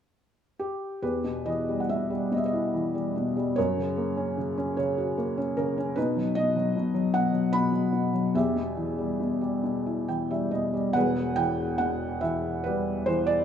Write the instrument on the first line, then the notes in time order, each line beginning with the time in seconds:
felt piano
0.59 G4
1.02 E2 G4 B4
1.24 B2
1.46 E3 D#5
1.69 G3
1.80 F#5
1.89 B2 E5
2.10 G3
2.32 B2 D#5
2.37 E5
2.46 D#5
2.53 E4
2.74 E3
2.95 G3
3.16 B2
3.37 G3
3.56 F#2 A#4 C#5
3.77 C#3
3.97 A#3
4.17 C#4
4.38 C#3
4.58 C#4
4.77 C#3 C#5
4.98 F#4
5.18 A#3
5.37 C#4
5.57 C#3 A#4
5.78 C#4
5.96 B2 D#4 B4
6.17 F#3
6.35 B2 D#5
6.56 F#3
6.76 B2
6.94 F#3
7.14 B2 F#5
7.33 F#3
7.53 B2 B5
7.72 F#3
7.93 B2
8.13 F#3
8.34 E2 G4 E5
8.56 B2
8.77 E3
8.98 G3
9.20 B2
9.41 G3
9.64 B2
9.86 E4
10.08 E3 G5
10.31 G3 E5
10.51 B2 D#5
10.74 G3
10.93 E1 E2 B4 F#5
11.36 E3 G5
11.78 B2 F#5
12.21 E3 E5
12.64 G3 B4
13.06 E3 C5
13.27 D5